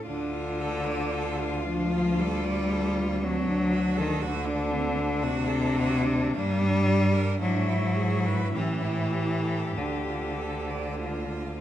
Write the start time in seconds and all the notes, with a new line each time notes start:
0.06 D2 D3 D4 F4
0.33 F4
0.61 A4
0.87 D5
1.13 A4
1.40 F4
1.65 F3 D4
1.92 F4
2.19 G3 A4
2.46 D5
2.73 A4
2.98 F4
3.23 F#3 C4 D4
3.49 D4
3.73 F#4
3.97 D#3 A4
4.22 D3 F#4
4.47 D4
4.71 C4
4.97 D4
5.22 C3 F#4
5.48 A4
5.76 F#4
6.05 D4
6.33 G2 G3 A#3
6.61 D4
6.87 G4
7.13 A#4
7.40 G#2 F#3 D4 E4
7.68 E4
7.96 G#4
8.26 B4
8.54 A2 E3 C#4 G4
8.82 E4
9.13 G4
9.43 A4
9.76 D2 D3 D4
10.08 F4
10.39 A4
10.70 D5
11.00 F4